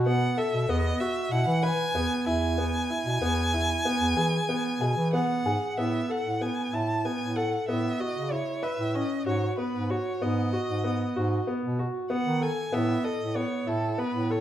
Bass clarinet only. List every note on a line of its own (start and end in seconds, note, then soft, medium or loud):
0.00 0.36 B2 medium
0.53 0.65 B2 medium
0.69 0.93 E2 loud
1.31 1.44 B2 loud
1.47 1.72 E3 medium
1.94 2.07 E2 medium
2.26 2.88 E2 medium
3.05 3.18 B2 medium
3.21 3.84 E2 medium
4.00 4.13 E2 medium
4.16 4.41 E3 medium
4.80 4.93 B2 medium
4.97 5.22 E3 medium
5.45 5.58 G#2 medium
5.77 6.02 A2 medium
6.25 6.50 A2 medium
6.72 7.09 A2 medium
7.20 7.57 A2 medium
7.67 7.92 A2 medium
8.15 8.40 C#3 medium
8.78 9.03 A2 medium
9.26 9.51 G#2 medium
9.74 9.99 G#2 medium
10.22 10.59 G#2 medium
10.69 11.06 G#2 medium
11.16 11.41 G#2 medium
11.63 11.88 B2 medium
12.25 12.50 D#3 medium
12.72 12.97 A2 medium
13.19 13.44 A2 medium
13.66 14.04 A2 medium
14.14 14.40 A2 medium